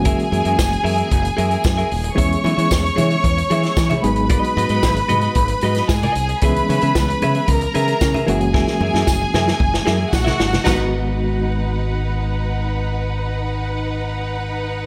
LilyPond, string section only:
\new Staff \with { instrumentName = "String section" } { \time 4/4 \key gis \minor \tempo 4 = 113 <gis' gis''>1 | <cis'' cis'''>2.~ <cis'' cis'''>8 <b' b''>8~ | <b' b''>2. <gis' gis''>4 | <b' b''>2 <ais' ais''>4. <gis' gis''>8~ |
<gis' gis''>2. <fis' fis''>4 | <dis' b' fis''>1~ | <dis' b' fis''>1 | }